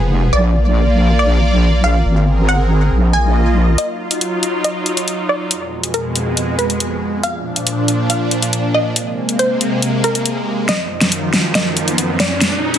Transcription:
Already playing: F1 F3 B3 G#4 B4
0.33 A#1 A#3 F4 D5
1.19 D5
1.84 F5
2.05 G#1 C4 G#4 A#4
2.49 F#5
2.92 A#1 A#3 F4 D#5
3.13 G#5
3.78 F#3 D#4 F4 D#5, closed hi-hat
4.11 closed hi-hat
4.21 closed hi-hat
4.43 closed hi-hat
4.64 D#5, closed hi-hat
4.86 closed hi-hat
4.97 closed hi-hat
5.08 closed hi-hat
5.29 D5
5.51 F2 B2 G#3, closed hi-hat
5.84 closed hi-hat
5.94 A#4, closed hi-hat
6.16 closed hi-hat
6.37 closed hi-hat
6.59 B4, closed hi-hat
6.70 closed hi-hat
6.80 closed hi-hat
7.23 A#2 F3 D4 F5, closed hi-hat
7.56 closed hi-hat
7.67 closed hi-hat
7.88 closed hi-hat
8.10 F5, closed hi-hat
8.31 closed hi-hat
8.42 closed hi-hat
8.53 closed hi-hat
8.74 D#5
8.96 C3 G#3 A#3, closed hi-hat
9.29 closed hi-hat
9.39 C5, closed hi-hat
9.61 closed hi-hat
9.82 closed hi-hat
10.04 A#4, closed hi-hat
10.15 closed hi-hat
10.26 closed hi-hat
10.69 F#2 D#3 F3 D#5, snare, closed hi-hat, riser
11.01 snare, closed hi-hat
11.12 closed hi-hat
11.33 snare, open hi-hat
11.55 D#5, snare, closed hi-hat
11.77 closed hi-hat
11.88 closed hi-hat
11.98 closed hi-hat
12.20 D5, snare, open hi-hat
12.41 F2 B2 G#3, snare, closed hi-hat
12.74 closed hi-hat

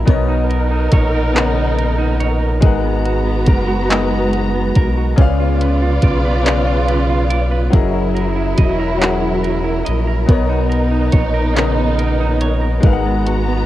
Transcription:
Already playing: F#3 E4 A#4 D#5
0.05 B1 B2 B3 D#4 A#4 C#5, kick, closed hi-hat
0.10 D#5
0.29 D#4
0.50 A#4, closed hi-hat
0.71 D#4
0.92 A#1 C#5, kick, closed hi-hat
1.15 A#4
1.33 C#3 B3 A#4, clap, closed hi-hat
1.38 C#5 F#5
1.56 D#4
1.78 A#4, closed hi-hat
1.98 D#4
2.20 C#5, closed hi-hat
2.41 A#4
2.61 G#1 G#3 B3 D#4 F#4 A#4 A#5, kick, closed hi-hat
2.65 B4 F#5
2.84 B3
3.05 F#4, closed hi-hat
3.26 B3
3.46 F#1 A#4, kick, closed hi-hat
3.68 F#4
3.89 G#3 D#4 A#4, clap, closed hi-hat
3.93 B3 D#5
4.11 B3
4.33 F#4, closed hi-hat
4.54 B3
4.75 B1 A#4, kick, closed hi-hat
4.97 F#4
5.16 C#2 C#3 B3 C#4 F4 B4 D5, kick, closed hi-hat
5.20 D5 F5
5.40 F4
5.61 B4, closed hi-hat
5.82 F4
6.02 B1 D5, kick, closed hi-hat
6.25 B4
6.43 C#3 C#4 B4 D5, closed hi-hat
6.47 F5, clap
6.67 F4
6.88 B4, closed hi-hat
7.09 F4
7.30 D5, closed hi-hat
7.51 B4
7.70 F#1 F#3 C#4 E4 G#4 A#4, kick, closed hi-hat
7.75 A#4 D#5
7.93 E4
8.15 A#4, closed hi-hat
8.36 E4
8.58 E1 D#5, kick, closed hi-hat
8.79 A#4
8.98 F#3 C#4 E4 G#4, closed hi-hat
9.03 A#4 F#5, clap
9.22 E4
9.43 A#4, closed hi-hat
9.64 E4
9.85 A#1 D#5, closed hi-hat
10.07 A#4
10.26 B1 B2 B3 D#4 A#4, kick, closed hi-hat
10.30 C#5 D#5
10.49 D#4
10.70 A#4, closed hi-hat
10.91 D#4
11.12 A#1 C#5, kick, closed hi-hat
11.34 A#4
11.54 C#3 B3 A#4, clap, closed hi-hat
11.58 C#5 D#5
11.77 D#4
11.99 A#4, closed hi-hat
12.20 D#4
12.41 C#5, closed hi-hat
12.62 A#4
12.81 G#1 G#3 B3 D#4 F#4 A#4 A#5, kick, closed hi-hat
12.85 B4 F5
12.93 F#5
13.06 B3
13.26 F#4, closed hi-hat
13.48 B3

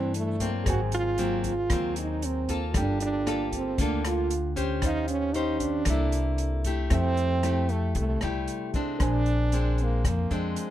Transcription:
Already playing: G2 E3 A3 C4 D4 E4 C5 D5 A5
0.14 A3, closed hi-hat
0.40 F#3 A#3 C4, kick, closed hi-hat
0.64 G#1 G#2 G#4 A#4 C5, kick, cross-stick, closed hi-hat
0.69 F#4 G#5
0.92 F4, closed hi-hat
1.18 F#3 A#3 C4, closed hi-hat
1.44 F4, kick, closed hi-hat
1.70 D#2 D#3 F#3 A#3 C4, kick, cross-stick, closed hi-hat
1.96 D#4, closed hi-hat
2.22 C4, closed hi-hat
2.48 A#3 F4 A4, kick, closed hi-hat
2.72 G1 G3 F4 A4, kick, cross-stick, closed hi-hat
2.77 D4 G5
3.00 D4, closed hi-hat
3.26 A#3 F4 A4, cross-stick, closed hi-hat
3.52 C4, kick, closed hi-hat
3.78 D2 D3 A#3 D4 F4 A4, kick, closed hi-hat
4.05 F4, cross-stick, closed hi-hat
4.30 closed hi-hat
4.56 C#4 G4 C5, kick, closed hi-hat
4.81 D#2 D#3 C#4 D#4 G4 C5, kick, cross-stick, closed hi-hat
4.87 F5
5.08 C#4, closed hi-hat
5.34 C#4 D#4 G4 C5, closed hi-hat
5.60 D4, kick, closed hi-hat
5.84 C2 D4 A4, kick, cross-stick, closed hi-hat
5.89 C3 A#3 E4 A4 E5
6.12 closed hi-hat
6.38 closed hi-hat
6.64 A3 E4 G4, kick, closed hi-hat
6.90 F2 F3 C4 A4 E5, kick, cross-stick, closed hi-hat
6.95 G5
7.17 closed hi-hat
7.43 A3 E4 G4, cross-stick, closed hi-hat
7.69 A3, closed hi-hat
7.95 C2 C3 A3, kick, closed hi-hat
8.21 C2 G3 A3 E4 G4, cross-stick, closed hi-hat
8.48 closed hi-hat
8.74 G#3 C4 D4, kick, closed hi-hat
8.97 A#1 D4 A#4, kick, cross-stick, closed hi-hat
9.01 A#2 D4 C5 G#5
9.26 closed hi-hat
9.52 G#3 C4 D4, closed hi-hat
9.78 closed hi-hat
9.82 A#3
10.04 F2 F3 A#3, kick, cross-stick, closed hi-hat
10.31 F2 G#3 C4 D4, closed hi-hat
10.56 closed hi-hat

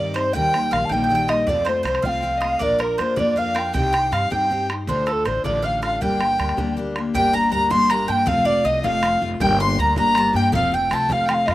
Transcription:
Already playing: G2 D#3 G3 C4 D5
0.00 D#4
0.11 C5 D5
0.15 G3 C4 D#4 C5, bodhran
0.33 D#2 D#3 G3 A#3 D#4 G5, bodhran
0.53 G3 A#3 D#4, bodhran
0.71 A#1 D#3 G3 A#3 D#4 F5, bodhran
0.85 A5
0.89 A#1 G3 A#3 D#4 G5, bodhran
0.94 D#3
1.04 G5
1.09 D#3 G3 A#3 D#4, bodhran
1.15 G5
1.28 G3 A#3 D#4 D#5, bodhran
1.47 F2 F3 A3 C4 F4 D5, bodhran
1.65 A3 F4 C5, bodhran
1.69 C4
1.83 C2 F3 C4 C5, bodhran
1.88 A3
1.95 bodhran
2.02 C2 A3 C4 F4 F5 G5, bodhran
2.07 F3 F5
2.20 F3 C4 F5 G5, bodhran
2.24 A3 F4
2.37 D#5
2.42 A3 C4 F4 F5, bodhran
2.59 A#1 A#3 D4 F4 A#4 D5, bodhran
2.79 D4 F4 A#4, bodhran
2.97 F2 A#3 D4 F4 A#4 C5, bodhran
3.16 F2 A#3 D4 F4 A#4 D5, bodhran
3.36 A#3 D4 F4 A#4 F5, bodhran
3.54 D4 F4 A#4 G5, bodhran
3.59 G5
3.73 C2 C4 D#4 G4 C5 G5, bodhran
3.93 D#4 G4 C5 G5, bodhran
4.11 G2 C4 D#4 G4 C5 F5, bodhran
4.30 G2 C4 D#4 G4 C5 G5, bodhran
4.49 C4 D#4 G4 C5, bodhran
4.69 D#4 C5, bodhran
4.87 D2 A2 D3 D4 F4 A4 C5, bodhran
5.06 D3 D4 F4 A4 C5, bodhran
5.12 A4
5.25 A1 D3 D4 F4 A4 C5, bodhran
5.44 A1 D2 A2 D3 D4 F4 A4 D5, bodhran
5.62 D3 D4 F4 A4 F5, bodhran
5.82 D3 D4 F4 A4 F5, bodhran
6.01 G1 G3 A#3 D4 G4 G5, bodhran
6.19 A#3 D4 G4, bodhran
6.38 D2 G3 A#3 D4 G4, bodhran
6.49 bodhran
6.57 D2 G3 A#3 D4 G4, bodhran
6.77 G3 A#3 D4 G4, bodhran
6.96 A#3 D4 G4, bodhran
7.14 G1 G3 A#3 D4 G4 G5, bodhran
7.33 A#3 D4 A#5, bodhran
7.51 D2 G3 A#3 D4 G4 A#5
7.70 G1 G3 A#3 D4 G4 C6, bodhran
7.89 G3 A#3 D4 G4 A#5, bodhran
8.08 G2 A#3 D4 G4 G5 A5
8.26 F1 F3 A3 C4 F4 F5, bodhran
8.45 A3 C4 F4 D5, bodhran
8.64 C2 F3 A3 C4 F4 D#5
8.83 F1 F3 A3 C4 F4 F5, bodhran
9.02 F3 A3 C4 F4, bodhran
9.21 F1 A3 C4 F4
9.40 G1 G3 A#3 D4 G4 G5, bodhran
9.60 A#3 D4 G4 C6
9.78 D2 G3 A#3 D4 G4 A#5
9.96 G1 G3 A#3 D4 G4 A#5, bodhran
10.15 G3 A#3 D4 G4 A5, bodhran
10.33 G2 A#3 D4 G4 G5
10.52 F1 F3 A3 C4 F4 F5, bodhran
10.72 A3 C4 F4 G5, bodhran
10.90 C2 F3 A3 C4 F4 A5, bodhran
11.09 F1 F3 A3 C4 F4 F5, bodhran
11.13 F5
11.26 F3 A3 C4 G5, bodhran
11.30 F4 F5 G5
11.34 F5
11.45 F2 A3 F4 D#5 F5, bodhran
11.50 C4 F5

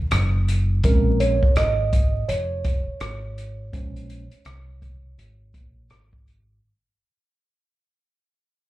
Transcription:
0.11 F#1, cross-stick, closed hi-hat
0.48 closed hi-hat
0.84 A#1 G#3 C4 C#4 A#4, kick, closed hi-hat
1.20 C#5, closed hi-hat
1.43 kick
1.56 G#1 D#5, cross-stick, closed hi-hat
1.93 kick, closed hi-hat
2.28 F1 C#5, closed hi-hat
2.65 kick, closed hi-hat
2.87 muted fingered electric bass stroke
3.00 G#1, cross-stick, closed hi-hat
3.38 closed hi-hat
3.73 A#1 G#3 C#4 C5, kick, closed hi-hat
3.96 closed hi-hat
4.10 closed hi-hat
4.31 closed hi-hat
4.45 C2, cross-stick, closed hi-hat
4.82 kick, closed hi-hat
5.18 G#1, closed hi-hat
5.54 A#1, kick, closed hi-hat
5.90 G#1, cross-stick, closed hi-hat
6.13 kick
6.28 closed hi-hat

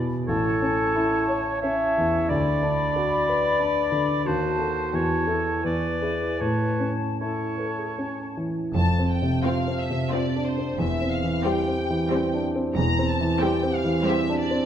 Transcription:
Already playing: E2 B2 B3 E4 D5
0.26 A1 A4 C#5 A5
0.62 C#4
0.95 E4
1.28 C#5
1.61 C#4 C#5 E5 A5
1.98 E2
2.29 D2 D5 B5
2.63 D4
2.96 F#4
3.29 B4
3.60 D4
3.92 D3
4.25 D#2 F#4 C5 A5
4.59 F#4 A4
4.92 E2 C#5 A5
5.27 E4 A4
5.63 E2 B4 D5 G#5
6.02 E4 G#4
6.39 A2 B4 C#5 A5
6.80 C#4
7.20 E4 A4 C#5 A5
7.58 A4 B4
7.67 A4
7.78 G#4
7.88 A4
7.98 C#4
8.37 E3
8.75 F1 F2 A5
8.99 C4
9.11 G5
9.22 C3
9.45 C4 F4 C5 F5
9.68 C4
9.80 E5
9.91 C3
10.12 C4 F4 C5 D5
10.36 D4
10.47 C5
10.58 C4
10.78 E1 E2 E5
11.01 C4
11.13 F5
11.24 E3
11.44 G3 C4 G4 C5 G5
11.68 C4
11.90 E3
12.11 G3 C4 G4 C5
12.34 D4
12.55 C4
12.75 E1 E2 A#5
12.99 C4
13.09 A5
13.21 E3
13.41 G3 C4 G4 C5 G5
13.63 C4
13.75 F5
13.84 E3
14.06 G3 C4 G4 C5 E5
14.29 D4
14.39 D5
14.51 C4

